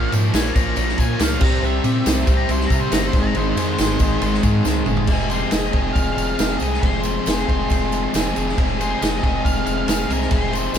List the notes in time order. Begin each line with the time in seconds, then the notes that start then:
Already playing: A#2 F3 A#3 F4 A#4 C#5 F5
0.12 G#2 A#2 F3 A#3, ride, tambourine
0.33 A#1 A#2 F3 A#3 G#5, snare, ride, tambourine
0.55 A#1 A#2 F3 A#3 A#5, kick, ride, tambourine
0.76 A#1 A#2 F3 A#3, ride, tambourine
0.89 snare
0.98 A#2 F3 A#3 G#5, kick, ride, tambourine
1.19 C#2 A#2 F3 A#3 F5, snare, ride, tambourine
1.39 C2 C3 G3 C4 E4 G4 C5, kick, crash
1.44 A#5
1.62 C2 C3 G3 C4 E5, tambourine
1.83 A#2 C3 G3 C4, ride, tambourine
2.05 C2 C3 G3 C4, snare, ride, tambourine
2.26 C2 C3 G3 C4, kick, ride, tambourine
2.37 A#5
2.49 C2 C3 G3 C4 C5, ride, tambourine
2.61 snare
2.67 C3 A#5, kick, ride
2.71 G3 C4, tambourine
2.81 C5
2.92 G1 C3 G3 C4 A#5, snare, ride, tambourine
3.08 C5
3.13 G#1 G#2 D#3 G#3 D#4 G#4 C5, kick, ride, tambourine
3.23 A#5
3.35 G#1 G#2 D#3 G#3 C5, ride, tambourine
3.50 C5
3.56 F2 G#2 D#3 G#3, ride, tambourine
3.78 G#1 G#2 D#3 G#3, snare, ride, tambourine
3.99 G#1 G#2 D#3 G#3, kick, ride, tambourine
4.22 G#1 G#2 D#3 G#3, ride, tambourine
4.34 snare
4.42 G#2 D#3 G#3, kick, ride, tambourine
4.64 C#2 G#2 D#3 G#3, snare, tambourine
4.86 G1 G#2 D#3 G#3, mid tom, tambourine
4.97 floor tom
5.07 F1 F2 C3 F3 G#3 C4 G#4, kick, crash
5.29 F3 G#3 C4 G#4 C5, ride, tambourine
5.50 F1 F3 G#3 C4 G#4 D#5, snare, ride, tambourine
5.72 F1 G#3 C4 G#4 D#5, kick, ride
5.76 F3
5.93 F1 F5, kick, ride
5.97 tambourine
6.15 F1 F5, ride, tambourine
6.37 F1 F2 C3 F3 G#3 C4 G#4, snare, ride, tambourine
6.58 C2 G#3 C4 G#4 D#5, tambourine
6.62 F3, ride
6.74 snare
6.78 F2 C5
6.82 F1 C3 F3 G#3 C4 G#4, kick, ride
7.03 F3 G#3 C4 G#4, ride, tambourine
7.25 F1 F3 G#3 C4 G#4, snare, ride, tambourine
7.47 F1 G#3 C4 G#4, kick, ride
7.51 F3
7.70 F1, kick, ride, tambourine
7.92 ride, tambourine
8.13 F1 F2 C3 F3 G#3 C4 G#4, snare, ride, tambourine
8.34 F1 F3 G#3 C4 G#4, ride, tambourine
8.49 snare
8.54 F1 F2 C3 F3 G#3 C4, kick, ride
8.58 G#4
8.77 F3 G#3 C4 G#4, ride, tambourine
8.81 C5
8.99 F1 F3 G#3 C4 G#4 D#5, ride, tambourine
9.03 snare
9.21 F1 F3 G#3 C4 G#4 D#5, kick, ride
9.45 F1 F5, kick, ride, tambourine
9.66 F1 F5, ride, tambourine
9.87 F1 F2 C3 F3 G#3 C4 G#4 F5, snare, ride, tambourine
10.09 C2 F3 G#3 C4 G#4 A#4, ride, tambourine
10.22 snare
10.30 F1 F2 C3 F3 G#3 C4 G#4 C5, kick, ride
10.34 tambourine
10.53 F3 G#3 C4 G#4, ride, tambourine
10.72 F1 F3 G#3 C4 G#4, ride, tambourine